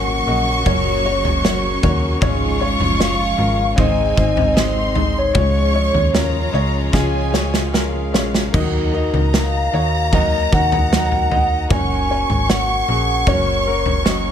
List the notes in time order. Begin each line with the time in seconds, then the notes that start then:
Already playing: G#1 A#2 C#3 F#3 A#3 C#4 F#4 A#4 C#5 F#5 C#6
0.26 A#1 A#3 C#4 F#4 A#4 D#5
0.65 F#1 F#3 A#3 C#4 F#4 A#4 C#5, kick, floor tom
1.04 A#3 C#4 F#4 A#4 C#5
1.25 floor tom
1.43 F#3 A#3 C#4 F#4 A#4 C#5, snare
1.82 D#2 A#3 C#4 F#4 A#4 C#5, kick, floor tom
2.21 G#1 G#2 C#3 F3 G#3 C#4 F4 G#4 C#5 C#6, kick, floor tom
2.59 G#3 C#4 F4 G#4 C#5
2.80 F#1, floor tom
2.98 G#3 C#4 F4 C#5 F5, snare
3.36 G#1 G#3 C#4 F4 A#4
3.76 G#1 G#2 C3 D#3 G#3 C4 D#4 G#4 C5 G#5, kick, floor tom
3.80 D#5
4.15 G#1 G#3 C4 D#4 G#4 C5, kick
4.37 floor tom
4.54 G#3 C4 D#4 G#4 C5 C6, snare
4.94 G#3 C4 D#4 G#4 C5, floor tom
5.18 C#5
5.33 C#2 C#3 F3 G#3 C#4 F4 G#4 C#5 C#6, kick, floor tom
5.73 G#3 C#4 F4 G#4 C#5
5.94 D#2, floor tom
6.13 G#3 C#4 F4 A#4 A#5, snare
6.53 C#2 G#3 C#4 F4 G#4 C#5
6.92 C#2 C#3 G#3 C#4 F4 G#4 G#5, kick, snare
7.32 G#3 C#4 F4 G#4 C#5, snare
7.54 snare
7.72 G#3 C#4 F4 G#4 A#4 F5, snare
8.12 A#1 G#3 C#4 F4 C#5, snare
8.34 snare
8.53 D#2 D#3 F#3 A#3 D#4 F#4 A#4 D#5 A#5, kick, floor tom, crash
8.92 A#3 D#4 F#4 A#4 D#5
9.13 C#2, floor tom
9.33 A#3 D#4 F#4 F5, snare
9.72 D#2 A#3 D#4 F#4 A#4 C#5
10.12 D#3 F#3 A#3 D#4 F#4 A#4 D#5, kick, floor tom
10.52 D#2 A#3 D#4 F#4 A#4 F#5, kick
10.72 floor tom
10.91 F#3 A#3 D#4 F#4 A#4 F#5, snare
11.12 floor tom
11.30 A#3 D#4 F#4 A#4 D#5, floor tom
11.69 F#1 F#3 A#3 C#4 F#4 A#4 C#5 G#5 C#6, kick, floor tom
12.09 A#3 C#4 F#4 A#4 C#5
12.30 G#1, floor tom
12.48 A#3 C#4 F#4 C#5 F#5, snare
12.87 A#1 A#3 C#4 F#4 G#4 A#4
13.26 F#1 F#3 A#3 C#4 F#4 A#4 C#5, kick, floor tom
13.66 A#3 C#4 F#4 A#4
13.86 floor tom
14.03 F#3 A#3 C#4 F#4 A#4 D#5, snare